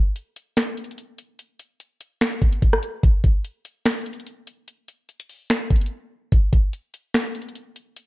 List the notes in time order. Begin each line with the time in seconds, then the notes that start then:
0.16 closed hi-hat
0.36 closed hi-hat
0.57 finger snap, snare, closed hi-hat
0.77 closed hi-hat
0.84 closed hi-hat
0.91 closed hi-hat
0.98 closed hi-hat
1.18 closed hi-hat
1.39 closed hi-hat
1.60 closed hi-hat
1.80 closed hi-hat
2.01 closed hi-hat
2.21 finger snap, snare, closed hi-hat
2.42 kick, closed hi-hat
2.53 closed hi-hat
2.62 kick, closed hi-hat
2.73 cross-stick
2.83 closed hi-hat
3.03 kick, closed hi-hat
3.24 kick, closed hi-hat
3.44 closed hi-hat
3.65 closed hi-hat
3.86 finger snap, snare, closed hi-hat
4.06 closed hi-hat
4.13 closed hi-hat
4.20 closed hi-hat
4.27 closed hi-hat
4.47 closed hi-hat
4.68 closed hi-hat
4.88 closed hi-hat
5.09 closed hi-hat
5.20 closed hi-hat
5.29 open hi-hat
5.50 finger snap, snare, closed hi-hat
5.70 kick, closed hi-hat
5.76 closed hi-hat
5.81 closed hi-hat
5.86 closed hi-hat
6.32 kick, closed hi-hat
6.53 kick, closed hi-hat
6.73 closed hi-hat
6.94 closed hi-hat
7.14 finger snap, snare, closed hi-hat
7.35 closed hi-hat
7.42 closed hi-hat
7.49 closed hi-hat
7.55 closed hi-hat
7.76 closed hi-hat
7.97 closed hi-hat